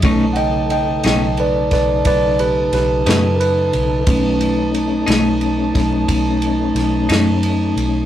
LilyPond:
<<
  \new Staff \with { instrumentName = "Horn section" } { \time 12/8 \key b \dorian \tempo 4. = 60 <dis' b' a''>1.~ | <dis' b' a''>1. | }
  \new Staff \with { instrumentName = "Tine electric piano" } { \time 12/8 \key b \dorian r8 <dis'' fis'' g''>8 <dis'' g''>8 <dis'' g''>8 <b' d''>8 <b' d''>8 <b' d''>8 <g' b'>8 <g' b'>8 <g' b'>8 <ais' b'>4~ | <ais' b'>4 r1 r4 | }
  \new Staff \with { instrumentName = "Tine electric piano" } { \time 12/8 \key b \dorian <dis a cis''>1. | <dis a cis'>8 r1 r4. | }
  \new Staff \with { instrumentName = "Tonewheel organ" } { \time 12/8 \key b \dorian <cis' dis' a'>8 <cis dis' a'>1~ <cis dis' a'>4. | <a cis' dis'>1. | }
  \new Staff \with { instrumentName = "Clean electric guitar" } { \time 12/8 \key b \dorian <b, a cis' dis'>8 r4 <b, a cis' dis'>8 r2 r8 <b, a cis' dis'>8 r4 | r4. <b, a cis' dis'>8 r2 r8 <b, a cis' dis'>8 r4 | }
  \new Staff \with { instrumentName = "Fingered electric bass" } { \clef bass \time 12/8 \key b \dorian b,,4. b,,4 b,,8 b,,4 b,,8 fis,4 b,,8 | b,,4. b,,4 b,,8 b,,4 b,,8 fis,4 b,,8 | }
  \new DrumStaff \with { instrumentName = "Drums" } \drummode { \time 12/8 <bd cymr>8 cymr8 cymr8 <cymr sn>8 cymr8 <bd cymr sn>8 <bd cymr>8 cymr8 <cymr sn>8 <cymr sn>8 cymr8 cymr8 | <bd cymr>8 cymr8 cymr8 <cymr sn>8 cymr8 <bd cymr sn>8 <bd cymr>8 cymr8 <cymr sn>8 <cymr sn>8 cymr8 cymr8 | }
>>